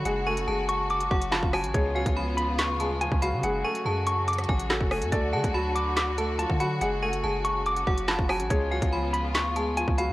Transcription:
Already playing: string section F#4
0.05 808-style bass F#1, string section C#3, grand piano G#3 G#4, clean electric guitar F#5, closed hi-hat
0.26 grand piano A3 A4, clean electric guitar G#5, synth bell C#6
0.37 closed hi-hat
0.47 808-style bass F#1, grand piano G#3 G#4, synth bell A5
0.69 clean electric guitar C#6, closed hi-hat
0.90 clean electric guitar D6, closed hi-hat
1.00 closed hi-hat
1.11 808-style bass F#1, grand piano F#3 F#4, synth bell F#5, kick
1.22 closed hi-hat
1.32 grand piano F3 F4, clean electric guitar A5, synth bell B5, snare, clap
1.43 808-style bass F#1, kick
1.53 grand piano F#3 F#4, clean electric guitar G#5, synth bell A5, cross-stick, open hi-hat
1.64 808-style bass A1, closed hi-hat
1.74 808-style bass C#2, grand piano G#3 G#4, string section B3 F4, clean electric guitar C#5, kick, closed hi-hat
1.95 grand piano F#3 F#4, clean electric guitar F5, synth bell G#5
2.06 808-style bass C#2, kick, closed hi-hat
2.17 grand piano F3 F4, synth bell B5
2.37 clean electric guitar B5, closed hi-hat
2.59 808-style bass D2, clean electric guitar C#6, snare, clap, closed hi-hat
2.80 grand piano G#3 G#4, synth bell A5, closed hi-hat
3.01 grand piano F3 F4, clean electric guitar G#5, closed hi-hat
3.12 808-style bass C#2, kick
3.22 grand piano F#3 F#4, clean electric guitar F5, synth bell B5, closed hi-hat
3.33 808-style bass C#3
3.43 808-style bass F#1, string section F#3 F#4, grand piano G#3 G#4, clean electric guitar F#5, closed hi-hat
3.64 grand piano A3 A4, clean electric guitar G#5, synth bell C#6
3.75 closed hi-hat
3.85 808-style bass F#2, grand piano G#3 G#4, synth bell A5
4.07 clean electric guitar C#6, closed hi-hat
4.28 clean electric guitar D6, closed hi-hat
4.33 closed hi-hat
4.38 cross-stick, closed hi-hat
4.44 closed hi-hat
4.49 808-style bass A1, synth bell G#5, kick
4.60 closed hi-hat
4.70 grand piano F#3 F#4, clean electric guitar A4, snare, clap
4.81 808-style bass F#1, kick
4.91 grand piano A3 A4, clean electric guitar G#5, cross-stick, open hi-hat
5.02 808-style bass F#2, closed hi-hat
5.12 808-style bass D2, string section D3 F#3, grand piano A3 A4, clean electric guitar D5, kick, closed hi-hat
5.33 808-style bass D3, grand piano G#3 G#4, clean electric guitar F#5, synth bell A5
5.44 808-style bass D2, kick, closed hi-hat
5.54 grand piano F#3 F#4, clean electric guitar A5, synth bell B5
5.75 clean electric guitar D6, closed hi-hat
5.97 clean electric guitar D6, snare, clap, closed hi-hat
6.18 grand piano A3 A4, synth bell A5, closed hi-hat
6.39 grand piano F3 F4, clean electric guitar A5, closed hi-hat
6.50 808-style bass D3, kick
6.60 grand piano F#3 F#4, clean electric guitar F#5, synth bell B5, closed hi-hat
6.81 808-style bass F#1, string section C#3, grand piano G#3 G#4, clean electric guitar F#5, closed hi-hat
7.03 grand piano A3 A4, clean electric guitar G#5, synth bell C#6
7.13 closed hi-hat
7.23 808-style bass F#1, grand piano G#3 G#4, synth bell A5
7.45 clean electric guitar C#6, closed hi-hat
7.66 clean electric guitar D6, closed hi-hat
7.76 closed hi-hat
7.87 808-style bass F#1, grand piano F#3 F#4, synth bell F#5, kick
7.98 closed hi-hat
8.08 grand piano F3 F4, clean electric guitar A5, synth bell B5, snare, clap
8.19 808-style bass F#1, kick
8.29 grand piano F#3 F#4, clean electric guitar G#5, synth bell A5, cross-stick, open hi-hat
8.40 808-style bass A1, closed hi-hat
8.50 808-style bass C#2, grand piano G#3 G#4, string section B3 F4, clean electric guitar C#5, kick, closed hi-hat
8.71 grand piano F#3 F#4, clean electric guitar F5, synth bell G#5
8.82 808-style bass C#2, kick, closed hi-hat
8.93 grand piano F3 F4, synth bell B5
9.13 clean electric guitar B5, closed hi-hat
9.35 808-style bass D2, clean electric guitar C#6, snare, clap, closed hi-hat
9.56 grand piano G#3 G#4, synth bell A5, closed hi-hat
9.77 grand piano F3 F4, clean electric guitar G#5, closed hi-hat
9.88 808-style bass C#2, kick
9.98 grand piano F#3 F#4, clean electric guitar F5, synth bell B5, closed hi-hat
10.09 808-style bass C#3

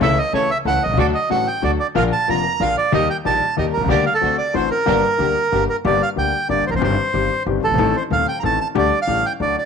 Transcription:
0.01 upright bass C#2, grand piano C#2 C#3 E3 A3 C#4 A4, string section C#4 E4 A4, bandoneon E5
0.18 bandoneon D#5
0.33 grand piano C#2 C#3 E3 A3 C#4 A4, upright bass C#2, string section C#4 E4 A4, bandoneon C#5
0.51 bandoneon E5
0.65 upright bass C#2, grand piano C#2 C#3 E3 A3 C#4 A4, string section C#4 E4 A4, bandoneon F#5
0.83 upright bass B1, grand piano B1, bandoneon D#5
0.90 upright bass C2, grand piano C2 C#2
0.94 upright bass C#2 D2, grand piano D2 D3
0.98 grand piano F#3 A3 F#4, string section D4 F#4 A4, bandoneon D5
1.14 bandoneon D#5
1.30 grand piano A1 A2 D3 F#3 A3 F#4, upright bass A1, string section D4 F#4 A4, bandoneon F#5
1.47 bandoneon G5
1.62 grand piano D2 D3 F#3 A3 F#4, upright bass D2, string section D4 F#4 A4, bandoneon D5
1.80 bandoneon D5
1.95 grand piano A#1 A#2 D3 F3 A#3 F4, upright bass A#1, string section D4 F4 A#4, bandoneon F5
2.13 bandoneon A5
2.28 upright bass F1, grand piano F1 F2 D3 F3 A#3 F4, string section D4 F4 A#4, bandoneon A#5
2.60 upright bass A#1, grand piano A#1 A#2 D3 F3 A#3 F4, string section D4 F4 A#4, bandoneon F5
2.78 bandoneon D5
2.92 grand piano D#2 D#3 G3 A#3 G4, upright bass D#2, string section D#4 G4 A#4, bandoneon D#5
3.10 bandoneon G5
3.25 grand piano A#1 A#2 D#3 G3 A#3 G4, upright bass A#1, string section D#4 G4 A#4, bandoneon A5
3.57 grand piano D#2 D#3 G3 A#3 G4, upright bass D#2, string section D#4 G4 A#4, bandoneon D#5
3.73 grand piano B1, upright bass B1, bandoneon A#4
3.81 grand piano C2 C#2, upright bass C2
3.86 upright bass C#2, grand piano D2 D3 G3 A#3 G4
3.90 upright bass D2, string section D4 G4 A#4, bandoneon D5
4.06 bandoneon F5
4.14 bandoneon A4
4.21 grand piano D2 D3 A3 C4 F#4, upright bass D2, string section D4 F#4 C5
4.38 bandoneon D5
4.53 grand piano A1 A2 D3 A3 C4 F#4, upright bass A1, string section D4 F#4 C5, bandoneon C5
4.71 bandoneon A#4
4.86 grand piano G1 G2 D3 G3 A#3 G4, upright bass G1, string section D4 G4 A#4
5.18 grand piano D2 D3 G3 A#3 G4, upright bass D2, string section D4 G4 A#4
5.52 grand piano G1 G2 D3 G3 A#3 G4, upright bass G1, string section D4 G4 A#4
5.69 bandoneon A#4
5.85 upright bass G1, grand piano G1 G2 D3 G3 A#3 G4, bandoneon D5
6.02 bandoneon F5
6.16 grand piano D2 D3 G3 A#3 G4, upright bass D2, bandoneon G5
6.49 grand piano G1 G2 D3 G3 A#3 G4, upright bass G1, bandoneon D5
6.67 upright bass E1, grand piano E2, bandoneon A#4 C5
6.73 upright bass F1 F#1, grand piano F2, bandoneon C5
6.79 grand piano G1 F#2 G2 D#3 G3 C4 G4, upright bass G1
6.84 bandoneon C5
7.14 upright bass G1, grand piano G1 G2 D#3 G3 C4 G4
7.46 upright bass G1, grand piano G1 G2 D#3 G3 C4 G4
7.64 upright bass F#1, grand piano F#1, bandoneon A4
7.70 upright bass G1 G#1, grand piano G1
7.75 grand piano G#1, upright bass A1
7.79 grand piano A1 A2 D#3 A3 C4 A4
7.97 bandoneon C5
8.11 grand piano D#1 D#2 D#3 A3 C4 A4, upright bass D#2, bandoneon F5
8.28 bandoneon G5
8.40 upright bass A1, grand piano A1 A2 D#3 A3 C4, bandoneon A#5
8.44 grand piano A4, bandoneon A5
8.61 bandoneon A5
8.75 upright bass D2, grand piano D2 D3 G3 A3 G4, bandoneon D5
9.02 bandoneon F5
9.07 upright bass A1, grand piano A1 A2 D3 G3 A3 G4
9.26 bandoneon G5
9.40 grand piano D2 D3 F#3 A3 F#4, upright bass D2, bandoneon D5
9.58 bandoneon D5

